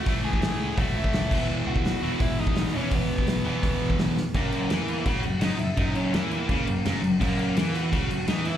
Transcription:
0.06 C#2 A2 E3 A3, kick, open hi-hat
0.23 C#2 G#4 G#5
0.33 kick
0.42 G#2, snare, open hi-hat
0.58 C#2
0.76 B1 A2 E3 A3 F#4 F#5, kick, open hi-hat
0.95 C#2 E4 E5
1.04 kick
1.13 C#2, snare, open hi-hat
1.30 E1 E2 B2 E3, kick, crash
1.49 E1
1.66 C#2 F#4 F#5
1.76 kick
1.85 E1, snare, open hi-hat
2.02 E1 E2 B2 E3
2.20 E1 E4 E5, kick, open hi-hat
2.39 G#1 D#4 D#5
2.47 kick
2.56 E1, snare, open hi-hat
2.73 E1 E2 B2 E3 C#4 C#5
2.91 E1 B3 B4, kick, open hi-hat
3.10 E1
3.18 kick
3.27 B1, snare, open hi-hat
3.44 E1 E2 B2 E3
3.62 C#2, kick, open hi-hat
3.82 E1
3.90 kick
3.99 E1, snare, open hi-hat
4.17 snare
4.34 F#1 F#2 A#3 A#4, kick, crash
4.52 crash
4.70 E2 E3, snare, crash
4.88 crash
5.06 C#2 C#3 F#4 F#5, kick, crash
5.23 F#1 F#2, crash
5.41 F#1 F#2 D#4 D#5, snare, crash
5.59 F#1 F#2 E4 E5, crash
5.77 F#1 F#2 D#4 D#5, kick, crash
5.95 C#4 C#5, crash
6.12 E2 E3 A#3 A#4, snare, crash
6.31 crash
6.49 C#2 C#3, kick, crash
6.67 F#1 F#2, crash
6.85 F#1 F#2, snare, crash
7.04 F#1 F#2, crash
7.20 F#1 F#2 A#3 A#4, kick, crash
7.39 crash
7.56 E2 E3, snare, crash
7.75 F#4 F#5, crash
7.92 C#2 C#3, kick, crash
8.09 F#1 F#2, crash
8.27 E2 E3 D#4 D#5, snare, crash
8.45 E4 E5, crash

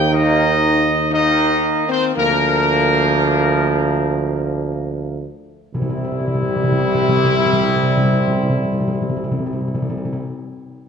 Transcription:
Already playing: D#2 D#3
0.09 D#3 A#3 D#4 D#5
1.11 D#3 A#3 D#4 D#5
1.88 C4 C5
2.15 D2 F3 A#3 A#4
5.74 C2 C3 G3 C4 E4
5.82 C3
5.89 C3
5.97 C3
6.04 C3
6.11 C3
6.20 C3
6.28 C3
6.35 C3
6.42 C3
6.50 C3
6.56 C3
6.64 C3
6.72 C3
6.79 C3
6.87 C3
6.95 C3
7.02 C3
7.09 C3
7.17 C3
7.24 C3
7.31 C3
7.39 C3
7.46 C3
7.53 C3
7.61 C3
7.68 C3
7.76 C3
7.83 C3
7.90 C3
7.97 C3
8.04 C3
8.13 C3
8.20 C3
8.27 C3
8.35 C3
8.43 C3
8.50 C3
8.57 C3
8.64 C3
8.73 C3
8.80 C3
8.87 C3
8.95 C3
9.02 C3
9.09 C3
9.16 C3
9.24 C3
9.31 C3
9.39 C3
9.46 C3
9.53 C3
9.60 C3
9.68 C3
9.75 C3
9.82 C3
9.90 C3
9.98 C3
10.05 C3
10.13 C3

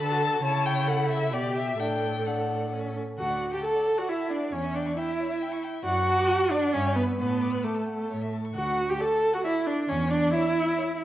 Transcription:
0.00 D3 A4 A5
0.11 F#4
0.23 A4
0.33 F#4
0.43 C#3 E4 C#5 A5
0.66 G5
0.88 A4 F#5
1.11 E5
1.33 B2 G4 D5
1.56 E5
1.79 A2 D4 A4 G5
2.26 D4 F#5
2.73 C#4
3.19 D2 F#4 A4 F#5
3.31 D5
3.42 F#5
3.53 G4 G5 A5
3.64 A4 F#5 A5
3.76 D5
3.87 A4
3.98 F#4 D5 F#5
4.09 E4 E5 F#5
4.20 A5
4.31 D4 D5 F#5
4.43 D5
4.53 E2 C#4 C#5
4.65 E5
4.75 D4 D5 G5
4.86 C#6
4.97 E4 E5 G5
5.08 E5
5.20 C#5
5.31 E5
5.42 G5
5.52 C#6
5.64 G5
5.74 E5
5.83 F#2 F#4 D5 F#5
5.96 F#5
6.07 A5
6.18 D6
6.29 A5
6.40 F#5
6.51 D4 D5
6.63 F#5
6.73 G2 C#4 C#5 E5
6.85 G5
6.96 B3 B4 B5
7.08 E6
7.18 A2 B3 B4 F#5
7.30 A5
7.41 D6
7.52 F#6
7.64 A3 A4 D6
7.75 A5
7.87 F#5
7.99 A5
8.10 A2 C#5
8.22 E5
8.33 A5
8.45 C#6
8.55 D2 F#4 F#5
8.89 G4 G5
9.00 A4 D5 A5
9.33 F#4 F#5
9.45 E4 D5 E5
9.67 D4 D5
9.88 E2 C#4 C#5
10.10 D4 D5
10.33 E4 C#5 E5
10.77 C#5

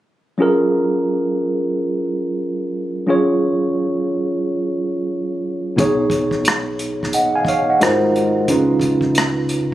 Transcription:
0.38 F#3 C#4 F4 G#4
0.42 A#4
3.07 F#3 C#4 F4 G#4 C#5
5.76 B1 B2 B3 D#4 G#4 C#5, kick, closed hi-hat
6.10 kick, closed hi-hat
6.31 kick
6.45 cross-stick, closed hi-hat
6.79 closed hi-hat
7.03 kick, cross-stick
7.13 D#5 F#5, closed hi-hat
7.36 F5 G#5
7.45 F5, kick, closed hi-hat
7.49 C#5
7.70 D#5 F#5
7.81 G#1 G#3 D#4 F4 F#4 A#4 C5, cross-stick, closed hi-hat
8.16 closed hi-hat
8.48 C#2 C#3 C#4 D#4 F4 B4, kick, closed hi-hat
8.80 kick, closed hi-hat
9.01 kick
9.15 cross-stick, closed hi-hat
9.49 closed hi-hat

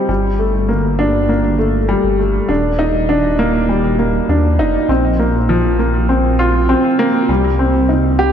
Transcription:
Already playing: G3 C4 D#4 G4
0.09 G1 G3
0.39 A3
0.69 A#3
0.99 D4
1.29 A#3
1.59 A3
1.89 G3
2.04 G1
2.19 A3
2.49 D#1 D4
2.79 D#4
3.09 D4
3.39 A#3
3.69 G3
3.99 A#3
4.29 D#2 D4
4.59 F1 D#4
4.89 A#1 C4
5.19 A#3
5.49 F3
5.79 A#3
6.09 C4
6.39 F4
6.69 C4
6.99 A#3
7.29 C2 G3
7.59 C4
7.89 D#4
8.19 G4

